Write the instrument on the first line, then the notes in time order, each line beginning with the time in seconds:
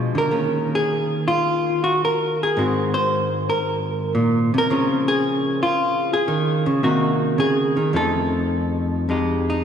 hollow-body jazz guitar
Already playing: B2 F3 G#3 D4 F4
0.15 D3 A#4
0.31 D#3 A#3 C#4
0.75 G#4
1.28 F4
1.84 F#4
2.05 A#4
2.43 G#4
2.57 G#2 D#3 C4 F#4
2.94 C5
3.50 A#4
4.15 A#2
4.54 C3
4.58 A#4
4.70 C#3 F3 C4 C#4
5.08 G#4
5.63 F4
6.13 G#4
6.28 D#3
6.66 C#3
6.83 C3 D#3 A#3 D#4 F#4
7.38 C#3 G#4
7.77 D#3
7.93 F2 F3 A3 D#4 A4
9.09 F2 G#3 D#4 G4
9.50 D#4